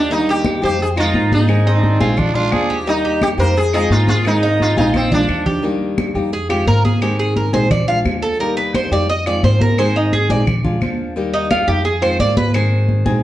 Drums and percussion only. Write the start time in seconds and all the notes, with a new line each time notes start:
0.10 high conga
0.27 high conga
0.45 high conga, claves
0.62 high conga
0.80 high conga
0.97 high conga, claves
1.14 high conga
1.32 high conga
1.49 high conga, claves
1.67 high conga
1.83 high conga
2.01 high conga
2.18 high conga, low conga, claves
2.36 high conga
2.52 high conga, claves
2.70 high conga
2.87 high conga
3.04 high conga
3.21 high conga, claves
3.39 high conga
3.56 high conga
3.73 high conga, claves
3.91 high conga
4.08 high conga
4.25 high conga, claves
4.43 high conga
4.60 high conga
4.77 high conga
4.94 high conga, claves
5.12 low conga
5.29 claves
5.46 low conga
5.64 high conga
5.81 high conga
5.98 high conga, claves
6.15 high conga
6.33 high conga
6.50 high conga, claves
6.68 high conga
6.85 high conga
7.02 high conga, claves
7.19 high conga
7.36 high conga
7.54 high conga
7.71 high conga, low conga, claves
7.88 high conga
8.05 high conga, claves
8.22 high conga
8.40 high conga
8.57 high conga
8.74 high conga, claves
8.92 high conga
9.09 high conga
9.26 high conga, claves
9.43 high conga
9.61 high conga
9.78 high conga, claves
9.95 high conga
10.12 high conga
10.30 high conga
10.47 high conga, low conga, claves
10.65 high conga, low conga
10.82 high conga, claves
10.99 high conga
11.16 high conga
11.34 high conga
11.51 high conga, claves
11.68 high conga
11.85 high conga
12.02 high conga, claves
12.20 high conga
12.37 high conga
12.54 high conga, claves
12.72 high conga
12.89 high conga
13.06 high conga